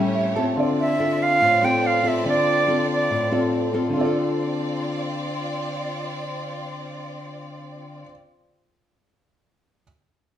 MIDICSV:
0, 0, Header, 1, 5, 480
1, 0, Start_track
1, 0, Key_signature, -1, "minor"
1, 0, Tempo, 421941
1, 651, Time_signature, 4, 2, 24, 8
1, 11805, End_track
2, 0, Start_track
2, 0, Title_t, "Flute"
2, 0, Program_c, 0, 73
2, 915, Note_on_c, 0, 76, 99
2, 1394, Note_on_c, 0, 77, 110
2, 1411, Note_off_c, 0, 76, 0
2, 1871, Note_on_c, 0, 79, 95
2, 1888, Note_off_c, 0, 77, 0
2, 2120, Note_on_c, 0, 77, 100
2, 2137, Note_off_c, 0, 79, 0
2, 2361, Note_on_c, 0, 76, 90
2, 2378, Note_off_c, 0, 77, 0
2, 2586, Note_off_c, 0, 76, 0
2, 2601, Note_on_c, 0, 74, 100
2, 3260, Note_off_c, 0, 74, 0
2, 3330, Note_on_c, 0, 74, 85
2, 3985, Note_off_c, 0, 74, 0
2, 11805, End_track
3, 0, Start_track
3, 0, Title_t, "Grand piano"
3, 0, Program_c, 1, 0
3, 0, Control_c, 1, 64, 127
3, 0, Note_on_c, 1, 61, 61
3, 0, Note_on_c, 1, 67, 56
3, 0, Note_on_c, 1, 69, 58
3, 0, Note_on_c, 1, 76, 68
3, 152, Note_off_c, 1, 76, 0
3, 169, Note_on_c, 1, 76, 57
3, 393, Note_off_c, 1, 76, 0
3, 404, Note_on_c, 1, 81, 54
3, 610, Note_on_c, 1, 60, 60
3, 617, Note_off_c, 1, 61, 0
3, 629, Note_off_c, 1, 67, 0
3, 630, Note_off_c, 1, 81, 0
3, 631, Note_on_c, 1, 65, 54
3, 635, Note_off_c, 1, 69, 0
3, 652, Note_on_c, 1, 69, 51
3, 664, Control_c, 1, 64, 0
3, 681, Note_on_c, 1, 74, 67
3, 838, Control_c, 1, 64, 127
3, 3705, Note_off_c, 1, 60, 0
3, 3716, Note_off_c, 1, 65, 0
3, 3726, Note_off_c, 1, 69, 0
3, 3741, Note_off_c, 1, 74, 0
3, 3753, Note_on_c, 1, 60, 37
3, 3767, Note_on_c, 1, 65, 34
3, 3778, Note_on_c, 1, 69, 36
3, 3790, Note_on_c, 1, 74, 40
3, 4408, Note_off_c, 1, 60, 0
3, 4425, Note_on_c, 1, 60, 62
3, 4452, Note_off_c, 1, 65, 0
3, 4469, Note_on_c, 1, 65, 54
3, 4495, Note_off_c, 1, 69, 0
3, 4501, Note_off_c, 1, 74, 0
3, 4505, Control_c, 1, 64, 0
3, 4513, Note_on_c, 1, 69, 59
3, 4563, Note_on_c, 1, 74, 65
3, 4735, Control_c, 1, 64, 127
3, 9084, Note_off_c, 1, 60, 0
3, 9128, Note_off_c, 1, 65, 0
3, 9172, Note_off_c, 1, 69, 0
3, 9222, Note_off_c, 1, 74, 0
3, 11191, Control_c, 1, 64, 0
3, 11805, End_track
4, 0, Start_track
4, 0, Title_t, "Violin section"
4, 0, Program_c, 2, 48
4, 0, Note_on_c, 2, 57, 70
4, 0, Note_on_c, 2, 67, 65
4, 0, Note_on_c, 2, 73, 74
4, 634, Note_off_c, 2, 67, 0
4, 638, Note_off_c, 2, 57, 0
4, 640, Note_off_c, 2, 73, 0
4, 648, Note_on_c, 2, 60, 72
4, 651, Note_on_c, 2, 65, 64
4, 658, Note_on_c, 2, 74, 79
4, 4451, Note_off_c, 2, 60, 0
4, 4453, Note_off_c, 2, 65, 0
4, 4456, Note_off_c, 2, 74, 0
4, 4486, Note_on_c, 2, 74, 78
4, 4489, Note_on_c, 2, 60, 70
4, 4492, Note_on_c, 2, 65, 65
4, 9145, Note_off_c, 2, 74, 0
4, 9148, Note_off_c, 2, 60, 0
4, 9151, Note_off_c, 2, 65, 0
4, 11805, End_track
5, 0, Start_track
5, 0, Title_t, "Nylon-string guitar"
5, 0, Program_c, 3, 24
5, 0, Note_on_c, 3, 45, 64
5, 0, Note_on_c, 3, 55, 66
5, 0, Note_on_c, 3, 61, 66
5, 0, Note_on_c, 3, 64, 78
5, 374, Note_off_c, 3, 55, 0
5, 376, Note_off_c, 3, 64, 0
5, 377, Note_off_c, 3, 61, 0
5, 405, Note_on_c, 3, 60, 66
5, 413, Note_on_c, 3, 65, 54
5, 414, Note_on_c, 3, 69, 74
5, 629, Note_off_c, 3, 45, 0
5, 646, Note_on_c, 3, 50, 74
5, 1090, Note_off_c, 3, 60, 0
5, 1093, Note_off_c, 3, 65, 0
5, 1094, Note_off_c, 3, 69, 0
5, 1126, Note_on_c, 3, 60, 53
5, 1134, Note_on_c, 3, 65, 58
5, 1137, Note_on_c, 3, 69, 64
5, 1584, Note_off_c, 3, 50, 0
5, 1603, Note_on_c, 3, 45, 66
5, 1811, Note_off_c, 3, 60, 0
5, 1813, Note_off_c, 3, 65, 0
5, 1815, Note_off_c, 3, 69, 0
5, 1844, Note_on_c, 3, 60, 75
5, 1850, Note_on_c, 3, 65, 66
5, 1856, Note_on_c, 3, 69, 79
5, 2289, Note_off_c, 3, 60, 0
5, 2291, Note_off_c, 3, 65, 0
5, 2295, Note_off_c, 3, 69, 0
5, 2312, Note_on_c, 3, 60, 62
5, 2320, Note_on_c, 3, 69, 58
5, 2321, Note_on_c, 3, 65, 61
5, 2524, Note_off_c, 3, 60, 0
5, 2526, Note_off_c, 3, 65, 0
5, 2527, Note_off_c, 3, 69, 0
5, 2543, Note_off_c, 3, 45, 0
5, 2560, Note_on_c, 3, 50, 68
5, 2566, Note_on_c, 3, 60, 61
5, 2570, Note_on_c, 3, 65, 64
5, 2571, Note_on_c, 3, 69, 69
5, 3009, Note_off_c, 3, 60, 0
5, 3010, Note_off_c, 3, 65, 0
5, 3012, Note_off_c, 3, 69, 0
5, 3041, Note_on_c, 3, 60, 58
5, 3048, Note_on_c, 3, 65, 61
5, 3054, Note_on_c, 3, 69, 66
5, 3503, Note_off_c, 3, 50, 0
5, 3530, Note_on_c, 3, 45, 63
5, 3728, Note_off_c, 3, 60, 0
5, 3731, Note_off_c, 3, 65, 0
5, 3734, Note_off_c, 3, 69, 0
5, 3771, Note_on_c, 3, 60, 68
5, 3777, Note_on_c, 3, 65, 62
5, 3781, Note_on_c, 3, 69, 71
5, 4213, Note_off_c, 3, 60, 0
5, 4216, Note_off_c, 3, 65, 0
5, 4217, Note_off_c, 3, 69, 0
5, 4248, Note_on_c, 3, 60, 60
5, 4252, Note_on_c, 3, 65, 57
5, 4259, Note_on_c, 3, 69, 67
5, 4434, Note_on_c, 3, 50, 59
5, 4467, Note_off_c, 3, 45, 0
5, 4491, Note_off_c, 3, 60, 0
5, 4505, Note_on_c, 3, 60, 67
5, 4540, Note_off_c, 3, 65, 0
5, 4554, Note_on_c, 3, 65, 76
5, 4596, Note_off_c, 3, 69, 0
5, 4610, Note_on_c, 3, 69, 71
5, 9138, Note_off_c, 3, 50, 0
5, 9210, Note_off_c, 3, 60, 0
5, 9258, Note_off_c, 3, 65, 0
5, 9314, Note_off_c, 3, 69, 0
5, 11805, End_track
0, 0, End_of_file